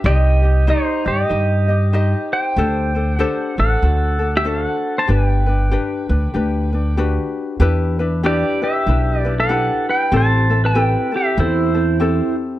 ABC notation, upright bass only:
X:1
M:4/4
L:1/8
Q:"Swing" 1/4=95
K:G
V:1 name="Upright bass" clef=bass
C,,3 G,, G,,4 | D,,3 A,,, D,,4 | G,,,3 D,, D,,4 | [K:Em] E,,4 B,,,4 |
A,,,4 E,,4 |]